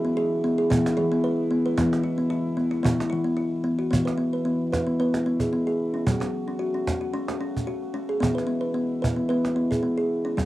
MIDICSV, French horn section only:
0, 0, Header, 1, 2, 480
1, 0, Start_track
1, 0, Key_signature, 4, "major"
1, 0, Tempo, 537153
1, 1589, Time_signature, 4, 2, 24, 8
1, 9340, End_track
2, 0, Start_track
2, 0, Title_t, "French horn section"
2, 0, Program_c, 0, 60
2, 0, Note_on_c, 0, 47, 66
2, 0, Note_on_c, 0, 56, 63
2, 0, Note_on_c, 0, 64, 78
2, 1571, Note_off_c, 0, 47, 0
2, 1596, Note_on_c, 0, 47, 66
2, 3356, Note_off_c, 0, 47, 0
2, 3356, Note_off_c, 0, 56, 0
2, 3356, Note_off_c, 0, 64, 0
2, 3508, Note_on_c, 0, 56, 49
2, 3511, Note_on_c, 0, 47, 55
2, 3511, Note_on_c, 0, 64, 61
2, 5407, Note_off_c, 0, 56, 0
2, 5409, Note_off_c, 0, 47, 0
2, 5409, Note_off_c, 0, 64, 0
2, 5427, Note_on_c, 0, 66, 63
2, 5429, Note_on_c, 0, 57, 56
2, 5436, Note_on_c, 0, 49, 64
2, 7330, Note_off_c, 0, 66, 0
2, 7331, Note_off_c, 0, 57, 0
2, 7334, Note_off_c, 0, 49, 0
2, 7361, Note_on_c, 0, 47, 62
2, 7361, Note_on_c, 0, 64, 68
2, 7364, Note_on_c, 0, 56, 57
2, 9260, Note_off_c, 0, 47, 0
2, 9260, Note_off_c, 0, 64, 0
2, 9261, Note_off_c, 0, 56, 0
2, 9287, Note_on_c, 0, 57, 53
2, 9292, Note_on_c, 0, 49, 57
2, 9295, Note_on_c, 0, 66, 65
2, 9340, Note_off_c, 0, 49, 0
2, 9340, Note_off_c, 0, 57, 0
2, 9340, Note_off_c, 0, 66, 0
2, 9340, End_track
0, 0, End_of_file